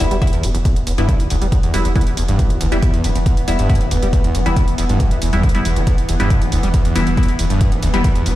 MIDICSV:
0, 0, Header, 1, 7, 480
1, 0, Start_track
1, 0, Key_signature, 1, "minor"
1, 0, Tempo, 434783
1, 720, Time_signature, 4, 2, 24, 8
1, 9223, End_track
2, 0, Start_track
2, 0, Title_t, "Synth stab"
2, 0, Program_c, 0, 62
2, 0, Note_on_c, 0, 55, 97
2, 0, Note_on_c, 0, 59, 91
2, 0, Note_on_c, 0, 64, 105
2, 204, Note_off_c, 0, 55, 0
2, 204, Note_off_c, 0, 59, 0
2, 205, Note_off_c, 0, 64, 0
2, 239, Note_on_c, 0, 55, 94
2, 239, Note_on_c, 0, 59, 88
2, 239, Note_on_c, 0, 64, 104
2, 372, Note_off_c, 0, 59, 0
2, 372, Note_off_c, 0, 64, 0
2, 373, Note_off_c, 0, 55, 0
2, 1083, Note_on_c, 0, 55, 90
2, 1083, Note_on_c, 0, 59, 79
2, 1083, Note_on_c, 0, 64, 100
2, 1290, Note_off_c, 0, 55, 0
2, 1290, Note_off_c, 0, 59, 0
2, 1290, Note_off_c, 0, 64, 0
2, 1919, Note_on_c, 0, 55, 97
2, 1919, Note_on_c, 0, 59, 91
2, 1919, Note_on_c, 0, 64, 106
2, 2124, Note_off_c, 0, 55, 0
2, 2124, Note_off_c, 0, 64, 0
2, 2125, Note_off_c, 0, 59, 0
2, 2159, Note_on_c, 0, 55, 93
2, 2159, Note_on_c, 0, 59, 82
2, 2159, Note_on_c, 0, 64, 99
2, 2292, Note_off_c, 0, 55, 0
2, 2292, Note_off_c, 0, 59, 0
2, 2293, Note_off_c, 0, 64, 0
2, 3003, Note_on_c, 0, 55, 88
2, 3003, Note_on_c, 0, 59, 81
2, 3003, Note_on_c, 0, 64, 97
2, 3210, Note_off_c, 0, 55, 0
2, 3210, Note_off_c, 0, 59, 0
2, 3210, Note_off_c, 0, 64, 0
2, 3839, Note_on_c, 0, 55, 95
2, 3839, Note_on_c, 0, 59, 88
2, 3840, Note_on_c, 0, 64, 108
2, 4044, Note_off_c, 0, 55, 0
2, 4045, Note_off_c, 0, 59, 0
2, 4045, Note_off_c, 0, 64, 0
2, 4079, Note_on_c, 0, 55, 93
2, 4079, Note_on_c, 0, 59, 84
2, 4079, Note_on_c, 0, 64, 104
2, 4212, Note_off_c, 0, 55, 0
2, 4212, Note_off_c, 0, 59, 0
2, 4212, Note_off_c, 0, 64, 0
2, 4923, Note_on_c, 0, 55, 88
2, 4923, Note_on_c, 0, 59, 82
2, 4923, Note_on_c, 0, 64, 98
2, 5129, Note_off_c, 0, 55, 0
2, 5129, Note_off_c, 0, 59, 0
2, 5130, Note_off_c, 0, 64, 0
2, 5884, Note_on_c, 0, 55, 75
2, 5884, Note_on_c, 0, 59, 73
2, 5884, Note_on_c, 0, 64, 85
2, 6086, Note_off_c, 0, 55, 0
2, 6086, Note_off_c, 0, 59, 0
2, 6086, Note_off_c, 0, 64, 0
2, 6123, Note_on_c, 0, 55, 101
2, 6123, Note_on_c, 0, 59, 90
2, 6123, Note_on_c, 0, 64, 107
2, 6249, Note_off_c, 0, 55, 0
2, 6249, Note_off_c, 0, 59, 0
2, 6249, Note_off_c, 0, 64, 0
2, 6843, Note_on_c, 0, 55, 86
2, 6843, Note_on_c, 0, 59, 83
2, 6843, Note_on_c, 0, 64, 96
2, 7049, Note_off_c, 0, 55, 0
2, 7049, Note_off_c, 0, 59, 0
2, 7050, Note_off_c, 0, 64, 0
2, 7679, Note_on_c, 0, 55, 96
2, 7679, Note_on_c, 0, 59, 86
2, 7679, Note_on_c, 0, 64, 103
2, 7884, Note_off_c, 0, 55, 0
2, 7884, Note_off_c, 0, 59, 0
2, 7884, Note_off_c, 0, 64, 0
2, 7919, Note_on_c, 0, 55, 93
2, 7919, Note_on_c, 0, 59, 89
2, 7919, Note_on_c, 0, 64, 99
2, 8052, Note_off_c, 0, 55, 0
2, 8052, Note_off_c, 0, 59, 0
2, 8053, Note_off_c, 0, 64, 0
2, 8762, Note_on_c, 0, 55, 92
2, 8762, Note_on_c, 0, 59, 81
2, 8762, Note_on_c, 0, 64, 96
2, 8969, Note_off_c, 0, 55, 0
2, 8969, Note_off_c, 0, 59, 0
2, 8969, Note_off_c, 0, 64, 0
2, 9223, End_track
3, 0, Start_track
3, 0, Title_t, "Synth drone"
3, 0, Program_c, 1, 95
3, 0, Note_on_c, 1, 52, 76
3, 0, Note_on_c, 1, 59, 78
3, 9223, Note_off_c, 1, 52, 0
3, 9223, Note_off_c, 1, 59, 0
3, 9223, End_track
4, 0, Start_track
4, 0, Title_t, "Acid bass"
4, 0, Program_c, 2, 38
4, 122, Note_on_c, 2, 55, 75
4, 187, Note_off_c, 2, 55, 0
4, 238, Note_on_c, 2, 40, 85
4, 341, Note_off_c, 2, 40, 0
4, 363, Note_on_c, 2, 40, 101
4, 478, Note_on_c, 2, 43, 108
4, 495, Note_off_c, 2, 40, 0
4, 547, Note_off_c, 2, 43, 0
4, 602, Note_on_c, 2, 40, 76
4, 641, Note_off_c, 2, 40, 0
4, 718, Note_on_c, 2, 40, 80
4, 821, Note_off_c, 2, 40, 0
4, 958, Note_on_c, 2, 40, 75
4, 1027, Note_off_c, 2, 40, 0
4, 1081, Note_on_c, 2, 43, 100
4, 1322, Note_on_c, 2, 38, 80
4, 1339, Note_off_c, 2, 43, 0
4, 1419, Note_off_c, 2, 38, 0
4, 1439, Note_on_c, 2, 38, 105
4, 1507, Note_off_c, 2, 38, 0
4, 1562, Note_on_c, 2, 55, 79
4, 1627, Note_off_c, 2, 55, 0
4, 1678, Note_on_c, 2, 40, 81
4, 1781, Note_off_c, 2, 40, 0
4, 1802, Note_on_c, 2, 40, 102
4, 1919, Note_on_c, 2, 43, 104
4, 1935, Note_off_c, 2, 40, 0
4, 1987, Note_off_c, 2, 43, 0
4, 2043, Note_on_c, 2, 40, 74
4, 2082, Note_off_c, 2, 40, 0
4, 2159, Note_on_c, 2, 40, 87
4, 2261, Note_off_c, 2, 40, 0
4, 2398, Note_on_c, 2, 40, 80
4, 2467, Note_off_c, 2, 40, 0
4, 2522, Note_on_c, 2, 43, 106
4, 2763, Note_on_c, 2, 38, 77
4, 2779, Note_off_c, 2, 43, 0
4, 2859, Note_off_c, 2, 38, 0
4, 2879, Note_on_c, 2, 38, 97
4, 2947, Note_off_c, 2, 38, 0
4, 3002, Note_on_c, 2, 55, 80
4, 3067, Note_off_c, 2, 55, 0
4, 3119, Note_on_c, 2, 40, 80
4, 3221, Note_off_c, 2, 40, 0
4, 3243, Note_on_c, 2, 40, 101
4, 3358, Note_on_c, 2, 43, 99
4, 3375, Note_off_c, 2, 40, 0
4, 3427, Note_off_c, 2, 43, 0
4, 3482, Note_on_c, 2, 40, 78
4, 3521, Note_off_c, 2, 40, 0
4, 3598, Note_on_c, 2, 40, 82
4, 3701, Note_off_c, 2, 40, 0
4, 3839, Note_on_c, 2, 40, 78
4, 3907, Note_off_c, 2, 40, 0
4, 3964, Note_on_c, 2, 43, 101
4, 4203, Note_on_c, 2, 38, 76
4, 4220, Note_off_c, 2, 43, 0
4, 4299, Note_off_c, 2, 38, 0
4, 4319, Note_on_c, 2, 38, 102
4, 4387, Note_off_c, 2, 38, 0
4, 4443, Note_on_c, 2, 55, 77
4, 4507, Note_off_c, 2, 55, 0
4, 4560, Note_on_c, 2, 40, 87
4, 4662, Note_off_c, 2, 40, 0
4, 4684, Note_on_c, 2, 40, 99
4, 4801, Note_on_c, 2, 43, 98
4, 4817, Note_off_c, 2, 40, 0
4, 4868, Note_off_c, 2, 43, 0
4, 4924, Note_on_c, 2, 40, 77
4, 4962, Note_off_c, 2, 40, 0
4, 5040, Note_on_c, 2, 40, 81
4, 5142, Note_off_c, 2, 40, 0
4, 5280, Note_on_c, 2, 40, 75
4, 5348, Note_off_c, 2, 40, 0
4, 5404, Note_on_c, 2, 43, 108
4, 5644, Note_on_c, 2, 38, 77
4, 5660, Note_off_c, 2, 43, 0
4, 5739, Note_off_c, 2, 38, 0
4, 5760, Note_on_c, 2, 40, 76
4, 5862, Note_off_c, 2, 40, 0
4, 5883, Note_on_c, 2, 40, 100
4, 6000, Note_on_c, 2, 45, 85
4, 6017, Note_off_c, 2, 40, 0
4, 6068, Note_off_c, 2, 45, 0
4, 6124, Note_on_c, 2, 40, 74
4, 6187, Note_off_c, 2, 40, 0
4, 6240, Note_on_c, 2, 40, 79
4, 6364, Note_on_c, 2, 52, 81
4, 6380, Note_off_c, 2, 40, 0
4, 6427, Note_off_c, 2, 52, 0
4, 6479, Note_on_c, 2, 40, 83
4, 6581, Note_off_c, 2, 40, 0
4, 6719, Note_on_c, 2, 40, 78
4, 6787, Note_off_c, 2, 40, 0
4, 6843, Note_on_c, 2, 43, 102
4, 7084, Note_on_c, 2, 38, 83
4, 7101, Note_off_c, 2, 43, 0
4, 7180, Note_off_c, 2, 38, 0
4, 7199, Note_on_c, 2, 38, 107
4, 7267, Note_off_c, 2, 38, 0
4, 7323, Note_on_c, 2, 55, 74
4, 7387, Note_off_c, 2, 55, 0
4, 7439, Note_on_c, 2, 40, 82
4, 7541, Note_off_c, 2, 40, 0
4, 7563, Note_on_c, 2, 40, 103
4, 7679, Note_on_c, 2, 43, 105
4, 7696, Note_off_c, 2, 40, 0
4, 7747, Note_off_c, 2, 43, 0
4, 7803, Note_on_c, 2, 40, 77
4, 7841, Note_off_c, 2, 40, 0
4, 7919, Note_on_c, 2, 40, 84
4, 8021, Note_off_c, 2, 40, 0
4, 8159, Note_on_c, 2, 40, 78
4, 8227, Note_off_c, 2, 40, 0
4, 8283, Note_on_c, 2, 43, 99
4, 8523, Note_on_c, 2, 38, 76
4, 8540, Note_off_c, 2, 43, 0
4, 8619, Note_off_c, 2, 38, 0
4, 8639, Note_on_c, 2, 38, 103
4, 8707, Note_off_c, 2, 38, 0
4, 8763, Note_on_c, 2, 55, 77
4, 8827, Note_off_c, 2, 55, 0
4, 8878, Note_on_c, 2, 40, 83
4, 8981, Note_off_c, 2, 40, 0
4, 9003, Note_on_c, 2, 40, 103
4, 9119, Note_on_c, 2, 43, 101
4, 9136, Note_off_c, 2, 40, 0
4, 9187, Note_off_c, 2, 43, 0
4, 9223, End_track
5, 0, Start_track
5, 0, Title_t, "Sub bass"
5, 0, Program_c, 3, 38
5, 0, Note_on_c, 3, 28, 101
5, 117, Note_off_c, 3, 28, 0
5, 124, Note_on_c, 3, 28, 82
5, 237, Note_off_c, 3, 28, 0
5, 480, Note_on_c, 3, 28, 106
5, 597, Note_off_c, 3, 28, 0
5, 604, Note_on_c, 3, 28, 84
5, 717, Note_off_c, 3, 28, 0
5, 960, Note_on_c, 3, 28, 96
5, 1077, Note_off_c, 3, 28, 0
5, 1083, Note_on_c, 3, 28, 82
5, 1197, Note_off_c, 3, 28, 0
5, 1440, Note_on_c, 3, 28, 103
5, 1557, Note_off_c, 3, 28, 0
5, 1564, Note_on_c, 3, 28, 84
5, 1677, Note_off_c, 3, 28, 0
5, 1920, Note_on_c, 3, 28, 97
5, 2037, Note_off_c, 3, 28, 0
5, 2043, Note_on_c, 3, 28, 83
5, 2157, Note_off_c, 3, 28, 0
5, 2400, Note_on_c, 3, 28, 98
5, 2517, Note_off_c, 3, 28, 0
5, 2524, Note_on_c, 3, 28, 81
5, 2637, Note_off_c, 3, 28, 0
5, 2879, Note_on_c, 3, 28, 93
5, 2997, Note_off_c, 3, 28, 0
5, 3004, Note_on_c, 3, 28, 81
5, 3117, Note_off_c, 3, 28, 0
5, 3359, Note_on_c, 3, 28, 98
5, 3477, Note_off_c, 3, 28, 0
5, 3483, Note_on_c, 3, 28, 82
5, 3597, Note_off_c, 3, 28, 0
5, 3839, Note_on_c, 3, 28, 96
5, 3957, Note_off_c, 3, 28, 0
5, 3964, Note_on_c, 3, 28, 84
5, 4077, Note_off_c, 3, 28, 0
5, 4320, Note_on_c, 3, 28, 104
5, 4437, Note_off_c, 3, 28, 0
5, 4444, Note_on_c, 3, 28, 82
5, 4557, Note_off_c, 3, 28, 0
5, 4799, Note_on_c, 3, 28, 98
5, 4916, Note_off_c, 3, 28, 0
5, 4923, Note_on_c, 3, 28, 80
5, 5037, Note_off_c, 3, 28, 0
5, 5279, Note_on_c, 3, 28, 101
5, 5397, Note_off_c, 3, 28, 0
5, 5403, Note_on_c, 3, 28, 82
5, 5517, Note_off_c, 3, 28, 0
5, 5760, Note_on_c, 3, 28, 102
5, 5877, Note_off_c, 3, 28, 0
5, 5884, Note_on_c, 3, 28, 80
5, 5997, Note_off_c, 3, 28, 0
5, 6240, Note_on_c, 3, 28, 99
5, 6357, Note_off_c, 3, 28, 0
5, 6364, Note_on_c, 3, 28, 86
5, 6477, Note_off_c, 3, 28, 0
5, 6720, Note_on_c, 3, 28, 97
5, 6837, Note_off_c, 3, 28, 0
5, 6843, Note_on_c, 3, 28, 82
5, 6957, Note_off_c, 3, 28, 0
5, 7200, Note_on_c, 3, 28, 106
5, 7317, Note_off_c, 3, 28, 0
5, 7323, Note_on_c, 3, 28, 88
5, 7437, Note_off_c, 3, 28, 0
5, 7679, Note_on_c, 3, 28, 106
5, 7796, Note_off_c, 3, 28, 0
5, 7803, Note_on_c, 3, 28, 82
5, 7917, Note_off_c, 3, 28, 0
5, 8159, Note_on_c, 3, 28, 104
5, 8277, Note_off_c, 3, 28, 0
5, 8283, Note_on_c, 3, 28, 80
5, 8397, Note_off_c, 3, 28, 0
5, 8639, Note_on_c, 3, 28, 91
5, 8756, Note_off_c, 3, 28, 0
5, 8763, Note_on_c, 3, 28, 83
5, 8877, Note_off_c, 3, 28, 0
5, 9119, Note_on_c, 3, 28, 101
5, 9223, Note_off_c, 3, 28, 0
5, 9223, End_track
6, 0, Start_track
6, 0, Title_t, "Impact"
6, 0, Program_c, 4, 103
6, 0, Note_on_c, 4, 60, 84
6, 719, Note_off_c, 4, 60, 0
6, 9223, End_track
7, 0, Start_track
7, 0, Title_t, "Drums"
7, 123, Note_on_c, 9, 42, 54
7, 233, Note_off_c, 9, 42, 0
7, 239, Note_on_c, 9, 36, 122
7, 239, Note_on_c, 9, 42, 54
7, 301, Note_off_c, 9, 42, 0
7, 301, Note_on_c, 9, 42, 68
7, 350, Note_off_c, 9, 36, 0
7, 363, Note_off_c, 9, 42, 0
7, 363, Note_on_c, 9, 42, 54
7, 473, Note_off_c, 9, 42, 0
7, 479, Note_on_c, 9, 46, 110
7, 590, Note_off_c, 9, 46, 0
7, 603, Note_on_c, 9, 42, 55
7, 714, Note_off_c, 9, 42, 0
7, 719, Note_on_c, 9, 36, 123
7, 719, Note_on_c, 9, 42, 89
7, 830, Note_off_c, 9, 36, 0
7, 830, Note_off_c, 9, 42, 0
7, 843, Note_on_c, 9, 42, 58
7, 954, Note_off_c, 9, 42, 0
7, 959, Note_on_c, 9, 46, 113
7, 1070, Note_off_c, 9, 46, 0
7, 1083, Note_on_c, 9, 42, 59
7, 1194, Note_off_c, 9, 42, 0
7, 1199, Note_on_c, 9, 36, 123
7, 1199, Note_on_c, 9, 42, 88
7, 1309, Note_off_c, 9, 36, 0
7, 1310, Note_off_c, 9, 42, 0
7, 1323, Note_on_c, 9, 42, 56
7, 1434, Note_off_c, 9, 42, 0
7, 1439, Note_on_c, 9, 46, 105
7, 1550, Note_off_c, 9, 46, 0
7, 1563, Note_on_c, 9, 42, 58
7, 1673, Note_off_c, 9, 42, 0
7, 1679, Note_on_c, 9, 36, 127
7, 1679, Note_on_c, 9, 42, 83
7, 1789, Note_off_c, 9, 36, 0
7, 1790, Note_off_c, 9, 42, 0
7, 1803, Note_on_c, 9, 42, 59
7, 1913, Note_off_c, 9, 42, 0
7, 1919, Note_on_c, 9, 46, 110
7, 2029, Note_off_c, 9, 46, 0
7, 2043, Note_on_c, 9, 42, 55
7, 2153, Note_off_c, 9, 42, 0
7, 2159, Note_on_c, 9, 36, 127
7, 2159, Note_on_c, 9, 42, 53
7, 2221, Note_off_c, 9, 42, 0
7, 2221, Note_on_c, 9, 42, 70
7, 2269, Note_off_c, 9, 36, 0
7, 2282, Note_off_c, 9, 42, 0
7, 2282, Note_on_c, 9, 42, 57
7, 2393, Note_off_c, 9, 42, 0
7, 2398, Note_on_c, 9, 46, 115
7, 2509, Note_off_c, 9, 46, 0
7, 2522, Note_on_c, 9, 42, 57
7, 2632, Note_off_c, 9, 42, 0
7, 2638, Note_on_c, 9, 42, 86
7, 2639, Note_on_c, 9, 36, 127
7, 2749, Note_off_c, 9, 36, 0
7, 2749, Note_off_c, 9, 42, 0
7, 2762, Note_on_c, 9, 42, 55
7, 2873, Note_off_c, 9, 42, 0
7, 2879, Note_on_c, 9, 46, 116
7, 2989, Note_off_c, 9, 46, 0
7, 3002, Note_on_c, 9, 42, 54
7, 3113, Note_off_c, 9, 42, 0
7, 3118, Note_on_c, 9, 42, 85
7, 3119, Note_on_c, 9, 36, 127
7, 3229, Note_off_c, 9, 36, 0
7, 3229, Note_off_c, 9, 42, 0
7, 3242, Note_on_c, 9, 42, 55
7, 3353, Note_off_c, 9, 42, 0
7, 3358, Note_on_c, 9, 46, 109
7, 3469, Note_off_c, 9, 46, 0
7, 3483, Note_on_c, 9, 42, 58
7, 3593, Note_off_c, 9, 42, 0
7, 3599, Note_on_c, 9, 36, 127
7, 3599, Note_on_c, 9, 42, 84
7, 3709, Note_off_c, 9, 36, 0
7, 3709, Note_off_c, 9, 42, 0
7, 3723, Note_on_c, 9, 42, 59
7, 3833, Note_off_c, 9, 42, 0
7, 3839, Note_on_c, 9, 46, 115
7, 3949, Note_off_c, 9, 46, 0
7, 3963, Note_on_c, 9, 42, 54
7, 4073, Note_off_c, 9, 42, 0
7, 4079, Note_on_c, 9, 36, 124
7, 4079, Note_on_c, 9, 42, 53
7, 4141, Note_off_c, 9, 42, 0
7, 4141, Note_on_c, 9, 42, 72
7, 4189, Note_off_c, 9, 36, 0
7, 4203, Note_off_c, 9, 42, 0
7, 4203, Note_on_c, 9, 42, 52
7, 4314, Note_off_c, 9, 42, 0
7, 4320, Note_on_c, 9, 46, 117
7, 4430, Note_off_c, 9, 46, 0
7, 4443, Note_on_c, 9, 42, 53
7, 4554, Note_off_c, 9, 42, 0
7, 4559, Note_on_c, 9, 36, 127
7, 4559, Note_on_c, 9, 42, 79
7, 4669, Note_off_c, 9, 36, 0
7, 4670, Note_off_c, 9, 42, 0
7, 4683, Note_on_c, 9, 42, 53
7, 4794, Note_off_c, 9, 42, 0
7, 4800, Note_on_c, 9, 46, 107
7, 4910, Note_off_c, 9, 46, 0
7, 4924, Note_on_c, 9, 42, 53
7, 5034, Note_off_c, 9, 42, 0
7, 5039, Note_on_c, 9, 36, 127
7, 5039, Note_on_c, 9, 42, 80
7, 5150, Note_off_c, 9, 36, 0
7, 5150, Note_off_c, 9, 42, 0
7, 5163, Note_on_c, 9, 42, 55
7, 5274, Note_off_c, 9, 42, 0
7, 5279, Note_on_c, 9, 46, 111
7, 5390, Note_off_c, 9, 46, 0
7, 5403, Note_on_c, 9, 42, 54
7, 5514, Note_off_c, 9, 42, 0
7, 5519, Note_on_c, 9, 36, 123
7, 5520, Note_on_c, 9, 42, 78
7, 5630, Note_off_c, 9, 36, 0
7, 5630, Note_off_c, 9, 42, 0
7, 5643, Note_on_c, 9, 42, 54
7, 5753, Note_off_c, 9, 42, 0
7, 5760, Note_on_c, 9, 46, 112
7, 5870, Note_off_c, 9, 46, 0
7, 5883, Note_on_c, 9, 42, 53
7, 5994, Note_off_c, 9, 42, 0
7, 5999, Note_on_c, 9, 36, 122
7, 6000, Note_on_c, 9, 42, 52
7, 6062, Note_off_c, 9, 42, 0
7, 6062, Note_on_c, 9, 42, 66
7, 6110, Note_off_c, 9, 36, 0
7, 6124, Note_off_c, 9, 42, 0
7, 6124, Note_on_c, 9, 42, 54
7, 6234, Note_off_c, 9, 42, 0
7, 6240, Note_on_c, 9, 46, 114
7, 6350, Note_off_c, 9, 46, 0
7, 6363, Note_on_c, 9, 42, 54
7, 6474, Note_off_c, 9, 42, 0
7, 6479, Note_on_c, 9, 36, 125
7, 6480, Note_on_c, 9, 42, 80
7, 6590, Note_off_c, 9, 36, 0
7, 6590, Note_off_c, 9, 42, 0
7, 6604, Note_on_c, 9, 42, 52
7, 6714, Note_off_c, 9, 42, 0
7, 6720, Note_on_c, 9, 46, 108
7, 6830, Note_off_c, 9, 46, 0
7, 6843, Note_on_c, 9, 42, 52
7, 6954, Note_off_c, 9, 42, 0
7, 6959, Note_on_c, 9, 36, 125
7, 6960, Note_on_c, 9, 42, 80
7, 7070, Note_off_c, 9, 36, 0
7, 7070, Note_off_c, 9, 42, 0
7, 7083, Note_on_c, 9, 42, 53
7, 7193, Note_off_c, 9, 42, 0
7, 7199, Note_on_c, 9, 46, 104
7, 7309, Note_off_c, 9, 46, 0
7, 7322, Note_on_c, 9, 42, 52
7, 7433, Note_off_c, 9, 42, 0
7, 7438, Note_on_c, 9, 42, 77
7, 7439, Note_on_c, 9, 36, 118
7, 7549, Note_off_c, 9, 36, 0
7, 7549, Note_off_c, 9, 42, 0
7, 7562, Note_on_c, 9, 42, 55
7, 7673, Note_off_c, 9, 42, 0
7, 7679, Note_on_c, 9, 46, 112
7, 7789, Note_off_c, 9, 46, 0
7, 7803, Note_on_c, 9, 42, 51
7, 7913, Note_off_c, 9, 42, 0
7, 7919, Note_on_c, 9, 36, 118
7, 7919, Note_on_c, 9, 42, 47
7, 7981, Note_off_c, 9, 42, 0
7, 7981, Note_on_c, 9, 42, 65
7, 8030, Note_off_c, 9, 36, 0
7, 8043, Note_off_c, 9, 42, 0
7, 8043, Note_on_c, 9, 42, 51
7, 8153, Note_off_c, 9, 42, 0
7, 8158, Note_on_c, 9, 46, 112
7, 8269, Note_off_c, 9, 46, 0
7, 8282, Note_on_c, 9, 42, 53
7, 8392, Note_off_c, 9, 42, 0
7, 8398, Note_on_c, 9, 42, 76
7, 8399, Note_on_c, 9, 36, 116
7, 8509, Note_off_c, 9, 42, 0
7, 8510, Note_off_c, 9, 36, 0
7, 8522, Note_on_c, 9, 42, 51
7, 8633, Note_off_c, 9, 42, 0
7, 8639, Note_on_c, 9, 46, 104
7, 8750, Note_off_c, 9, 46, 0
7, 8763, Note_on_c, 9, 42, 51
7, 8873, Note_off_c, 9, 42, 0
7, 8879, Note_on_c, 9, 36, 119
7, 8879, Note_on_c, 9, 42, 80
7, 8990, Note_off_c, 9, 36, 0
7, 8990, Note_off_c, 9, 42, 0
7, 9003, Note_on_c, 9, 42, 52
7, 9113, Note_off_c, 9, 42, 0
7, 9119, Note_on_c, 9, 46, 105
7, 9223, Note_off_c, 9, 46, 0
7, 9223, End_track
0, 0, End_of_file